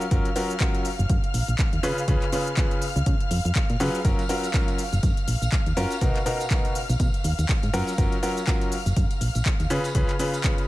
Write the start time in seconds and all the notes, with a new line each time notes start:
Already playing: F5 F6
0.01 cabasa
0.11 F#1 F#3 C#4 F4 F#4 A#4, kick, closed hi-hat, cabasa
0.25 closed hi-hat
0.36 F#3 C#4 F4 F#4 A#4, open hi-hat, cabasa
0.50 closed hi-hat, cabasa
0.60 F#3 C#4 F4 F#4 A#4, kick, clap, closed hi-hat, cabasa
0.75 closed hi-hat
0.85 open hi-hat, cabasa
0.99 F#1, closed hi-hat, cabasa
1.09 F#2, kick, closed hi-hat, cabasa
1.24 closed hi-hat
1.34 A#1, open hi-hat, cabasa
1.48 A#1, closed hi-hat, cabasa
1.59 kick, clap, closed hi-hat, cabasa
1.73 D#2, closed hi-hat
1.83 C#3 C#4 F4 G#4 B4, open hi-hat, cabasa
1.98 cabasa
2.08 C#2 C#3 C#4 F4 G#4 B4, kick, closed hi-hat, cabasa
2.22 clap, closed hi-hat
2.32 C#3 C#4 F4 G#4 B4, open hi-hat, cabasa
2.47 closed hi-hat, cabasa
2.57 C#3 C#4 F4 G#4 B4, kick, clap, closed hi-hat, cabasa
2.71 closed hi-hat
2.82 open hi-hat, cabasa
2.96 C#2, closed hi-hat, cabasa
3.06 C#3, kick, closed hi-hat, cabasa
3.20 closed hi-hat
3.31 F2, open hi-hat, cabasa
3.45 F2, closed hi-hat, cabasa
3.55 kick, clap, closed hi-hat, cabasa
3.70 A#2, closed hi-hat
3.80 C#3 F#3 C#4 F4 G#4 B4, open hi-hat, cabasa
3.95 cabasa
4.05 F#1 F#3 C#4 F4 F#4 A#4, kick, closed hi-hat, tambourine, cabasa
4.19 closed hi-hat, tambourine
4.29 F#3 C#4 F4 F#4 A#4, open hi-hat, cabasa
4.44 closed hi-hat, tambourine, cabasa
4.54 F#3 C#4 F4 F#4 A#4, kick, clap, closed hi-hat, tambourine, cabasa
4.68 closed hi-hat, tambourine
4.78 open hi-hat, cabasa
4.93 F#1, closed hi-hat, tambourine, cabasa
5.03 F#2, kick, closed hi-hat, tambourine, cabasa
5.17 closed hi-hat, tambourine
5.28 A#1, open hi-hat, cabasa
5.42 A#1, closed hi-hat, tambourine, cabasa
5.52 kick, clap, closed hi-hat, tambourine, cabasa
5.66 D#2, closed hi-hat, tambourine
5.77 F#2 C#4 F4 F#4 A#4, open hi-hat, cabasa
5.90 tambourine, cabasa
6.01 B1 B2 B3 D#4 F#4 A#4, kick, closed hi-hat, tambourine, cabasa
6.16 clap, closed hi-hat, tambourine
6.26 B2 B3 D#4 F#4 A#4, open hi-hat, cabasa
6.40 closed hi-hat, tambourine, cabasa
6.50 B2 B3 D#4 F#4 A#4, kick, clap, closed hi-hat, cabasa
6.65 closed hi-hat, tambourine
6.75 open hi-hat, cabasa
6.89 B1, closed hi-hat, tambourine, cabasa
7.00 B2, kick, closed hi-hat, tambourine, cabasa
7.14 closed hi-hat, tambourine
7.24 D#2, open hi-hat, cabasa
7.39 D#2, closed hi-hat, tambourine, cabasa
7.49 kick, clap, closed hi-hat, cabasa
7.63 G#2, closed hi-hat, tambourine
7.74 F#2 F#3 C#4 F4 F#4 A#4, open hi-hat, cabasa
7.87 tambourine, cabasa
7.98 F#1 F#3 C#4 F4 F#4 A#4, kick, closed hi-hat, tambourine, cabasa
8.12 closed hi-hat, tambourine
8.23 F#3 C#4 F4 F#4 A#4, open hi-hat, cabasa
8.37 closed hi-hat, tambourine, cabasa
8.47 F#3 C#4 F4 F#4 A#4, kick, clap, closed hi-hat, tambourine, cabasa
8.61 closed hi-hat, tambourine
8.72 open hi-hat, cabasa
8.86 F#1, closed hi-hat, tambourine, cabasa
8.96 F#2, kick, closed hi-hat, tambourine, cabasa
9.11 closed hi-hat, tambourine
9.21 A#1, open hi-hat, cabasa
9.35 A#1, closed hi-hat, tambourine, cabasa
9.46 kick, clap, closed hi-hat, cabasa
9.60 D#2, closed hi-hat, tambourine
9.70 C#3 C#4 F4 G#4 B4, open hi-hat, cabasa
9.84 tambourine, cabasa
9.95 C#2 C#3 C#4 F4 G#4 B4, kick, closed hi-hat, cabasa
10.09 clap, closed hi-hat, tambourine
10.19 C#3 C#4 F4 G#4 B4, open hi-hat, cabasa
10.34 closed hi-hat, tambourine, cabasa
10.44 C#3 C#4 F4 G#4 B4, kick, clap, closed hi-hat, tambourine, cabasa
10.58 closed hi-hat, tambourine